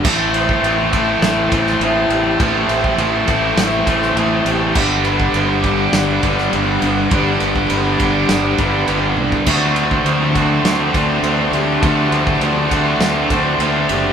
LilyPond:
<<
  \new Staff \with { instrumentName = "String section" } { \time 4/4 \key g \major \tempo 4 = 102 <e'' a'' c'''>1~ | <e'' a'' c'''>1 | <fis'' b'' d'''>1~ | <fis'' b'' d'''>1 |
<a' a'' c''' d'''>1~ | <a' a'' c''' d'''>1 | }
  \new Staff \with { instrumentName = "Clean electric guitar" } { \time 4/4 \key g \major a,8 c''8 e'8 a8 e'8 c''8 e'8 g8 | a,8 c''8 e'8 a8 e'8 c''8 e'8 g8 | g8 b'4 g4 b'4 d'8 | g8 b'4 g4 b'4 d'8 |
d8 c''4 a4 c''4 g8 | d8 c''4 a4 c''4 g8 | }
  \new Staff \with { instrumentName = "Overdriven electric guitar" } { \time 4/4 \key g \major <a, e a c' e' a'>4. <a, e a c' e' a'>2~ <a, e a c' e' a'>8 | <a, e a c' e' a'>4. <a, e a c' e' a'>2~ <a, e a c' e' a'>8 | <g, d g b d' g'>4. <g, d g b d' g'>2~ <g, d g b d' g'>8 | <g, d g b d' g'>4. <g, d g b d' g'>2~ <g, d g b d' g'>8 |
<d a c' fis'>4. <d a c' fis'>2~ <d a c' fis'>8 | <d a c' fis'>4. <d a c' fis'>2~ <d a c' fis'>8 | }
  \new Staff \with { instrumentName = "Distorted electric guitar" } { \clef bass \time 4/4 \key g \major <a, e a>2~ <a, e a>8 <a, e a>8 <a, e a>4 | <a, e a>2~ <a, e a>8 <a, e a>8 <a, e a>4 | <g, d g>2~ <g, d g>8 <g, d g>8 <g, d g>4 | <g, d g>2~ <g, d g>8 <g, d g>8 <g, d g>4 |
<d a d'>2~ <d a d'>8 <d a d'>8 <d a d'>4 | <d a d'>2~ <d a d'>8 <d a d'>8 <d a d'>4 | }
  \new Staff \with { instrumentName = "Fingered electric bass" } { \clef bass \time 4/4 \key g \major a,,4 a,,4 a,,8 a,,8 a,,8 a,,8 | a,,8 a,,8 a,,8 a,,8 a,,8 a,,8 a,,8 a,,8 | g,,4 g,,4 g,,8 g,,8 g,,8 g,,8 | g,,8 g,,8 g,,8 g,,8 g,,8 g,,8 g,,8 c,8 |
d,4 d,4 d,8 d,8 d,8 d,8 | d,8 d,8 d,8 d,8 d,8 d,8 d,8 fis,,8 | }
  \new DrumStaff \with { instrumentName = "Drums" } \drummode { \time 4/4 <cymc bd>8 cymr16 bd16 cymr8 <bd cymr>8 <cymr sn>8 <bd cymr>16 sn16 cymr8 cymr8 | <bd cymr>8 cymr16 bd16 cymr8 <bd cymr>8 <cymr sn>8 <bd cymr>16 sn16 cymr8 cymr8 | <cymc bd>8 cymr16 bd16 cymr8 <bd cymr>8 <cymr sn>8 <bd cymr>16 sn16 cymr8 cymr8 | <bd cymr>8 cymr16 bd16 cymr8 <bd cymr>8 <cymr sn>8 <bd cymr>8 cymr8 tommh16 bd16 |
<cymc bd cymr>8 cymr16 bd16 cymr8 <bd cymr>8 <cymr sn>8 <bd cymr>8 cymr8 cymr8 | <bd cymr>8 cymr16 bd16 cymr8 <bd cymr>8 <cymr sn>8 <bd cymr>8 cymr8 cymr8 | }
>>